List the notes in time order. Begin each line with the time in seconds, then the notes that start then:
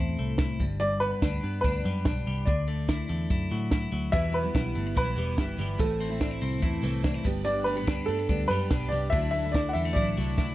Already playing: E2 A2 C4 E4 A4
0.19 C2 A3
0.38 E4, kick, snare, closed hi-hat
0.60 G1 G2, kick
0.80 G2 D5, closed hi-hat
1.00 B3 B4
1.22 D2 D4, kick, snare, closed hi-hat
1.43 G2 B3
1.61 D2 D4 B4, kick, closed hi-hat
1.85 F#2 G3
2.05 B1 D4, kick, snare, closed hi-hat
2.27 C2 G3
2.45 D2 D3 D5, kick, closed hi-hat
2.68 A3
2.89 E4, kick, snare, closed hi-hat
3.09 E2 A3
3.30 F#2 E4, kick, closed hi-hat
3.51 A2 F#3
3.71 E4, kick, snare, closed hi-hat
3.92 D2 F#3
4.12 E2 B2 E3 G3 B3 E4 E5, kick, closed hi-hat
4.33 B3 B4
4.42 E3 G3 B3 E4
4.55 B1 E4, kick, snare, closed hi-hat
4.75 G1 A3
4.87 B3
4.95 B1 E3 G3 B3 E4 B4, kick, closed hi-hat
5.16 E1 E3 G3 B3 E4
5.37 G1 E3 G3 B3 E4, kick, snare, closed hi-hat
5.57 G1 E3 G3 B3 E4
5.78 A1 A2 E3 A3 C4 E4 A4, kick, closed hi-hat
6.00 C4, open hi-hat
6.09 A3 C4 E4
6.21 D4, kick, snare, closed hi-hat
6.31 E4
6.41 C2 C4, open hi-hat
6.61 E2 E3 A3 C4 E4, kick, closed hi-hat
6.83 C2 E3 A3 C4 E4, open hi-hat
7.03 E3 A3 C4 D4 E4, kick, snare, closed hi-hat
7.14 E4
7.24 G1 G2 G3 B3 D4 G4, kick, open hi-hat
7.44 G2 D3 G3 B3 D4 G4 D5, closed hi-hat
7.64 A3 B4, open hi-hat
7.75 G3 B3 D4 G4
7.87 D2 D4, kick, snare, closed hi-hat
8.06 G2 A3 A4, open hi-hat
8.19 B3
8.28 D2 G3 B3 D4 G4, kick, closed hi-hat
8.48 F#2 G3 B3 D4 B4, open hi-hat
8.52 G4
8.70 B1 G3 B3 D4 G4, kick, snare, closed hi-hat
8.89 C2 G3 B3 D5, open hi-hat
8.94 D4 G4
9.10 D2 D3 F#3 A3 D4 E4 E5, kick, closed hi-hat
9.31 A3 E5, open hi-hat
9.44 A3 D4 E4
9.52 E4 D5, kick, snare, closed hi-hat
9.69 F#5
9.73 E2 G3 E5, open hi-hat
9.85 A3
9.93 A1 F#3 A3 E4 D5, kick, closed hi-hat
9.97 D4 E4
10.16 C2 F#3 A3 D4 E4, open hi-hat
10.37 F#3 A3 D4 E4, kick, snare